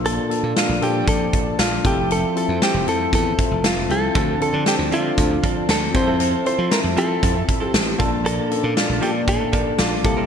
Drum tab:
HH |xxxxxxxx|xxxxxxxx|xxxxxxxx|xxxxxxxx|
SD |--o---o-|--o---o-|--o---o-|--o---o-|
BD |----oo-o|----oo--|o---oo-o|----oo-o|

HH |xxxxxxxx|
SD |--o---o-|
BD |----oo-o|